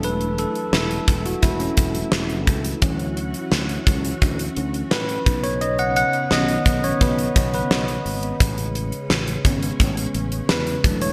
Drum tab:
HH |xxxx-xxxxxxx-xxx|xxxx-xxxxxxx-xxx|xxxx-xxxxxxx-xox|xxxx-xxxxxxx-xxx|
SD |----o-------o---|----o-------o---|----o-------o---|----o-------o---|
BD |------o-o-o---o-|o-----o-o-----o-|------o-o-o-----|o-----o-o-----o-|